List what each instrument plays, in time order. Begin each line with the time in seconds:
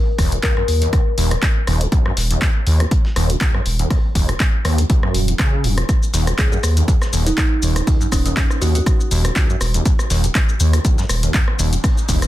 0.18 sub bass D#1, acid bass D#2, kick, cross-stick, closed hi-hat, open hi-hat
0.32 acid bass C#2, closed hi-hat
0.43 acid bass C#2, kalimba A#4, kick, snare, clap, closed hi-hat
0.57 acid bass F#2, kalimba A#4, cross-stick
0.68 sub bass D#2, closed hi-hat, open hi-hat
0.82 acid bass D#2, closed hi-hat
0.93 acid bass D#2, kick, cross-stick, closed hi-hat
1.18 sub bass D#1, acid bass D#2, closed hi-hat, open hi-hat
1.31 acid bass G#2, cross-stick, closed hi-hat
1.42 kick, snare, clap, closed hi-hat
1.67 sub bass D#1, acid bass D#2, cross-stick, closed hi-hat, open hi-hat
1.81 acid bass C#2, closed hi-hat
1.92 acid bass C#2, kick, closed hi-hat
2.06 acid bass F#2, cross-stick
2.17 sub bass D#1, snare, closed hi-hat, open hi-hat
2.31 acid bass D#2, closed hi-hat
2.42 acid bass D#2, kick, cross-stick, snare, clap, closed hi-hat
2.67 sub bass D#2, acid bass D#2, closed hi-hat, open hi-hat
2.80 acid bass G#2, cross-stick, closed hi-hat
2.91 kick, closed hi-hat
3.05 snare
3.16 sub bass D#1, acid bass D#2, cross-stick, closed hi-hat, open hi-hat
3.30 acid bass C#2, closed hi-hat
3.41 acid bass C#2, kick, snare, clap, closed hi-hat
3.54 acid bass F#2, cross-stick
3.66 sub bass D#1, closed hi-hat, open hi-hat
3.79 acid bass D#2, closed hi-hat
3.90 acid bass D#2, kick, cross-stick, closed hi-hat, open hi-hat
4.15 sub bass D#1, acid bass D#2, kick, closed hi-hat, open hi-hat
4.29 acid bass G#2, cross-stick, closed hi-hat
4.40 kick, snare, clap, closed hi-hat
4.65 acid bass D#2, sub bass D#2, cross-stick, closed hi-hat, open hi-hat
4.78 acid bass C#2, closed hi-hat
4.90 acid bass C#2, kick, closed hi-hat
5.03 acid bass F#2, cross-stick
5.14 sub bass D#1, closed hi-hat, open hi-hat
5.28 acid bass D#2, closed hi-hat
5.39 acid bass C#3, kick, cross-stick, snare, clap, closed hi-hat
5.64 sub bass D#1, acid bass F#2, closed hi-hat, open hi-hat
5.78 acid bass D#2, cross-stick, closed hi-hat
5.89 kick, cross-stick, closed hi-hat, shaker
6.03 shaker
6.14 sub bass D#1, acid bass D#2, snare, closed hi-hat, open hi-hat, shaker
6.27 acid bass C#2, cross-stick, closed hi-hat, shaker
6.38 acid bass C#2, kalimba G#4, kick, snare, clap, closed hi-hat, shaker
6.52 acid bass F#2, kalimba G#4, shaker
6.63 sub bass D#2, cross-stick, closed hi-hat, open hi-hat, shaker
6.77 acid bass D#2, closed hi-hat, shaker
6.88 acid bass D#2, kick, closed hi-hat, shaker
7.02 cross-stick, snare, shaker
7.13 sub bass D#1, acid bass D#2, closed hi-hat, open hi-hat, shaker
7.26 acid bass G#2, kalimba D#4, closed hi-hat, shaker
7.38 kalimba D#4, kick, cross-stick, snare, clap, closed hi-hat, shaker
7.62 sub bass D#1, acid bass D#2, closed hi-hat, open hi-hat, shaker
7.76 acid bass C#2, cross-stick, closed hi-hat, shaker
7.87 acid bass C#2, kick, closed hi-hat, open hi-hat, shaker
8.01 acid bass F#2, shaker
8.12 sub bass D#1, kalimba C#4, kick, cross-stick, closed hi-hat, open hi-hat, shaker
8.25 acid bass D#2, kalimba C#4, closed hi-hat, shaker
8.37 acid bass D#2, kick, snare, clap, closed hi-hat, shaker
8.51 cross-stick, shaker
8.61 acid bass D#2, sub bass D#2, kalimba F#4, closed hi-hat, open hi-hat, shaker
8.75 acid bass G#2, kalimba F#4, closed hi-hat, shaker
8.86 kick, cross-stick, closed hi-hat, shaker
9.00 shaker
9.11 sub bass D#1, acid bass D#2, closed hi-hat, open hi-hat, shaker
9.25 acid bass C#2, cross-stick, closed hi-hat, shaker
9.36 acid bass C#2, kick, snare, clap, closed hi-hat, shaker
9.49 acid bass F#2, shaker
9.61 sub bass D#1, cross-stick, closed hi-hat, open hi-hat, shaker
9.74 acid bass D#2, closed hi-hat, shaker
9.85 kick, closed hi-hat, riser, shaker
9.99 cross-stick, shaker
10.10 sub bass D#1, acid bass D#2, snare, closed hi-hat, open hi-hat, shaker
10.24 acid bass G#2, closed hi-hat, shaker
10.35 kick, cross-stick, snare, clap, closed hi-hat, shaker
10.49 shaker
10.60 acid bass D#2, sub bass D#2, closed hi-hat, open hi-hat, shaker
10.73 acid bass C#2, cross-stick, closed hi-hat, shaker
10.85 acid bass C#2, kick, closed hi-hat, shaker
10.98 acid bass F#2, snare, shaker
11.09 sub bass D#1, cross-stick, closed hi-hat, open hi-hat, shaker
11.23 acid bass D#2, closed hi-hat, shaker
11.34 kick, snare, clap, closed hi-hat, shaker
11.48 cross-stick
11.59 sub bass D#1, acid bass D#2, closed hi-hat, open hi-hat, shaker
11.73 acid bass G#2, closed hi-hat, shaker
11.84 kick, cross-stick, closed hi-hat, open hi-hat, shaker
11.98 shaker
12.09 sub bass D#1, acid bass D#2, kick, closed hi-hat, open hi-hat, shaker
12.22 acid bass C#2, cross-stick, closed hi-hat, shaker